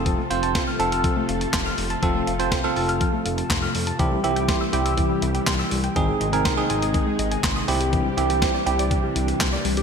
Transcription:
Already playing: analog synth bass F1, string machine C3 F3 A3 F4 A4, tine electric piano C4 F4 A4
0.06 synth pluck F3, kick, closed hi-hat
0.18 synth pluck A3
0.30 analog synth bass F1, tine electric piano C4 F4 C5, synth pluck F5, closed hi-hat
0.43 synth pluck A5, closed hi-hat
0.55 synth pluck C6, kick, snare, closed hi-hat
0.67 synth pluck F6
0.80 analog synth bass F1, tine electric piano C4 F4 A4, synth pluck A5, closed hi-hat
0.92 synth pluck F6, closed hi-hat
1.04 synth pluck F3, kick, closed hi-hat
1.17 synth pluck A3
1.29 analog synth bass F1, synth pluck F5, closed hi-hat
1.41 synth pluck A5, closed hi-hat
1.53 analog synth bass F1, synth pluck C6, kick, snare, clap, closed hi-hat
1.66 synth pluck F6
1.78 analog synth bass F1, synth pluck A3, open hi-hat
1.90 synth pluck A5, closed hi-hat
2.03 analog synth bass F1, synth pluck F3, tine electric piano C4 F4 A4, kick, closed hi-hat
2.15 synth pluck A3
2.27 analog synth bass F1, synth pluck F5, closed hi-hat
2.39 tine electric piano C4 F4 C5, synth pluck A5, closed hi-hat
2.52 synth pluck C6, kick, snare, closed hi-hat
2.64 tine electric piano C4 F4 A4, synth pluck F6
2.76 analog synth bass F1, synth pluck A5, open hi-hat
2.89 synth pluck F6, closed hi-hat
3.01 synth pluck F3, kick, closed hi-hat
3.13 synth pluck A3
3.26 analog synth bass F1, synth pluck F5, closed hi-hat
3.38 synth pluck A5, closed hi-hat
3.50 analog synth bass F1, synth pluck C6, kick, snare, clap, closed hi-hat
3.62 synth pluck F6
3.75 analog synth bass F1, synth pluck A3, open hi-hat
3.87 synth pluck A5, closed hi-hat
3.99 analog synth bass C2, synth pluck E3, string machine E3 G3 E4 G4, tine electric piano C4 E4 G4, kick, closed hi-hat
4.12 synth pluck G3
4.24 analog synth bass C2, tine electric piano C4 E4 G4, synth pluck E5, closed hi-hat
4.36 synth pluck G5, closed hi-hat
4.48 synth pluck C6, kick, snare, closed hi-hat
4.61 synth pluck E6
4.73 analog synth bass C2, tine electric piano C4 E4 G4, synth pluck G5, closed hi-hat
4.85 synth pluck E6, closed hi-hat
4.97 synth pluck E3, kick, closed hi-hat
5.10 synth pluck G3
5.22 analog synth bass C2, synth pluck E5, closed hi-hat
5.35 synth pluck G5, closed hi-hat
5.47 analog synth bass C2, synth pluck C6, kick, snare, clap, closed hi-hat
5.59 synth pluck E6
5.71 analog synth bass C2, synth pluck G3, open hi-hat
5.84 synth pluck G5, closed hi-hat
5.96 analog synth bass G#1, string machine C3 D#3 G#3 D#4 G#4, synth pluck D#3, tine electric piano C4 D#4 G#4, kick, closed hi-hat
6.08 synth pluck G#3
6.21 analog synth bass G#1, synth pluck D#5, closed hi-hat
6.33 tine electric piano C4 D#4 A#4, synth pluck G#5, closed hi-hat
6.45 synth pluck C6, kick, snare, closed hi-hat
6.58 tine electric piano C4 D#4 G#4, synth pluck D#6
6.70 analog synth bass G#1, synth pluck G#5, closed hi-hat
6.82 synth pluck D#6, closed hi-hat
6.94 synth pluck D#3, kick, closed hi-hat
7.07 synth pluck G#3
7.19 analog synth bass G#1, synth pluck D#5, closed hi-hat
7.31 synth pluck G#5, closed hi-hat
7.43 analog synth bass G#1, synth pluck C6, kick, snare, clap, closed hi-hat
7.56 synth pluck D#6
7.68 analog synth bass C2, string machine E3 G3 D4 G4, synth pluck G3, tine electric piano C4 E4 G4, open hi-hat
7.80 synth pluck G4, closed hi-hat
7.93 synth pluck E3, kick, closed hi-hat
8.05 synth pluck G3
8.17 analog synth bass C2, tine electric piano C4 E4 G4, synth pluck E4, closed hi-hat
8.30 synth pluck G4, closed hi-hat
8.42 synth pluck C5, kick, snare, closed hi-hat
8.54 synth pluck D5
8.67 analog synth bass C2, tine electric piano C4 E4 G4, synth pluck G4, closed hi-hat
8.79 synth pluck D5, closed hi-hat
8.91 synth pluck E3, kick, closed hi-hat
9.04 synth pluck G3
9.16 analog synth bass C2, synth pluck E4, closed hi-hat
9.28 synth pluck G4, closed hi-hat
9.40 analog synth bass C2, synth pluck C5, kick, snare, clap, closed hi-hat
9.53 synth pluck D5
9.65 analog synth bass C2, synth pluck G3, string machine A5, open hi-hat
9.77 synth pluck G4, closed hi-hat

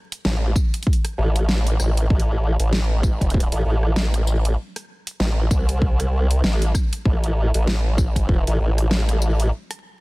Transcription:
0.12 closed hi-hat
0.25 wobble bass A1, snare
0.56 kick, tambourine
0.74 closed hi-hat
0.83 closed hi-hat
0.87 kick
0.93 closed hi-hat
1.05 cross-stick, closed hi-hat
1.18 wobble bass A1
1.36 closed hi-hat
1.49 snare
1.67 closed hi-hat
1.80 wobble bass A1, cross-stick, tambourine
1.97 closed hi-hat
2.10 wobble bass A1, kick
2.20 closed hi-hat
2.59 wobble bass A1, closed hi-hat
2.73 snare
3.03 kick, tambourine
3.21 kick, closed hi-hat
3.30 closed hi-hat
3.34 kick
3.40 closed hi-hat
3.52 wobble bass A1, closed hi-hat
3.65 wobble bass A1
3.83 cross-stick
3.96 snare
4.14 cross-stick, closed hi-hat
4.27 tambourine
4.45 closed hi-hat
4.76 cross-stick, closed hi-hat
5.07 closed hi-hat
5.20 wobble bass A1, snare
5.51 wobble bass C2, kick, tambourine
5.69 closed hi-hat
5.82 kick
6.00 cross-stick, closed hi-hat
6.31 closed hi-hat
6.44 wobble bass A1, snare
6.62 closed hi-hat
6.75 kick, cross-stick, tambourine
6.93 closed hi-hat
7.05 wobble bass A1, kick
7.24 closed hi-hat
7.54 wobble bass A1, closed hi-hat
7.68 snare
7.98 kick, tambourine
8.16 kick, closed hi-hat
8.29 kick
8.47 wobble bass A1, closed hi-hat
8.60 wobble bass A1
8.78 cross-stick, closed hi-hat
8.91 snare
9.09 cross-stick, closed hi-hat
9.22 tambourine
9.40 closed hi-hat
9.71 cross-stick, closed hi-hat

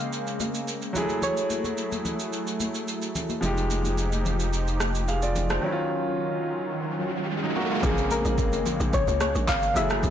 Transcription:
Already playing: grand piano C#3 A#3 C4 G#4, analog synth pad C#3 G#3 A#3, synth pluck F5
0.13 shaker
0.27 shaker
0.40 high conga, shaker
0.55 shaker
0.68 shaker
0.82 shaker
0.93 grand piano F#3 G#3 E4, analog synth pad F#3 A3 E4, low conga, shaker
0.98 grand piano A3 G#4
1.09 high conga, shaker
1.22 synth pluck C#5, low conga, shaker
1.37 shaker
1.50 high conga, shaker
1.64 high conga, shaker
1.78 shaker
1.92 high conga, shaker
2.05 low conga, shaker
2.20 shaker
2.33 shaker
2.47 shaker
2.60 high conga, shaker
2.75 shaker
2.88 shaker
3.02 shaker
3.15 low conga, shaker
3.29 high conga, shaker
3.41 analog synth bass F1, grand piano F3 G#3 D#4, analog synth pad F3 D#4 G4, low conga, shaker
3.46 grand piano G4
3.57 shaker
3.70 high conga, shaker
3.84 high conga, shaker
3.98 shaker
4.12 high conga, shaker
4.25 low conga, shaker
4.40 shaker
4.53 shaker
4.67 shaker
4.80 cross-stick, high conga, shaker
4.95 shaker
5.08 grand piano G#4 F5, shaker
5.22 grand piano F4 D5, shaker
5.36 low conga, shaker
5.50 grand piano D#4 C5, cross-stick, high conga, shaker
5.61 grand piano D#3 F#3 C#4, analog synth pad D#3 F#3 C#4 F4, riser
5.66 grand piano E4
5.72 grand piano F4
7.43 grand piano F#3 D#4
7.56 grand piano A#3 F#4
7.70 grand piano G#3 F4
7.81 log drum bass A#1, grand piano C#3 A#3 C4, analog synth pad C#3 G#3 A#3, kick, low conga, shaker
7.86 grand piano G#4
7.98 shaker
8.11 synth pluck A#4, high conga, shaker
8.25 log drum bass A#1, high conga, shaker
8.38 kick, shaker
8.53 log drum bass G#1, high conga, shaker
8.66 low conga, shaker
8.80 log drum bass A#1, shaker
8.93 log drum bass A#1, synth pluck C#5, kick, shaker
9.08 log drum bass C#2, shaker
9.21 synth pluck C#5, cross-stick, high conga, shaker
9.35 log drum bass A#1, shaker
9.48 log drum bass G#1, synth pluck F5, kick, clap, shaker
9.62 shaker
9.74 log drum bass F#1, grand piano F#3 G#3 E4, analog synth pad F#3 A3 E4 G#4, synth pluck E5, low conga, shaker
9.79 grand piano A3 G#4
9.90 cross-stick, high conga, shaker
10.03 log drum bass F#1, kick, low conga, shaker

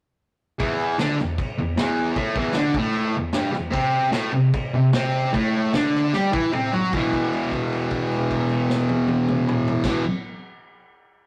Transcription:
0.59 distorted electric guitar E2 E3, kick, crash
0.98 distorted electric guitar D3 D4, snare, crash
1.19 distorted electric guitar E2, snare
1.38 kick, crash
1.58 distorted electric guitar E2
1.77 distorted electric guitar E2 E3, snare, crash
2.16 distorted electric guitar A2 A3, kick, crash
2.36 distorted electric guitar E2 E3, kick
2.53 distorted electric guitar D3 D4, snare, crash
2.74 distorted electric guitar A2 A3, kick
2.93 crash
3.16 distorted electric guitar E2
3.33 distorted electric guitar G2 G3, snare, crash
3.52 distorted electric guitar E2, snare
3.70 distorted electric guitar C3 C4, kick, crash
4.12 distorted electric guitar A2 A3, snare, crash
4.32 distorted electric guitar C3
4.53 kick, crash
4.74 distorted electric guitar C3
4.93 distorted electric guitar C3 C4, snare, crash
5.33 distorted electric guitar A2 A3, kick, crash
5.74 distorted electric guitar D3 D4, snare, crash
5.95 snare
6.13 distorted electric guitar G3 G4, snare
6.32 distorted electric guitar E3 E4, kick
6.53 distorted electric guitar C3 C4, mid tom
6.73 distorted electric guitar F#3 F#4, floor tom
6.93 distorted electric guitar E2 B2, kick, crash
6.98 distorted electric guitar E3
7.13 kick, crash
7.33 crash
7.52 kick, crash
7.72 crash
7.91 kick, crash
8.12 crash
8.31 kick, crash
8.49 crash
8.70 snare
8.89 high tom
9.08 high tom
9.28 mid tom
9.49 mid tom
9.68 floor tom
9.83 distorted electric guitar E2 B2, kick, snare, crash
9.89 distorted electric guitar E3

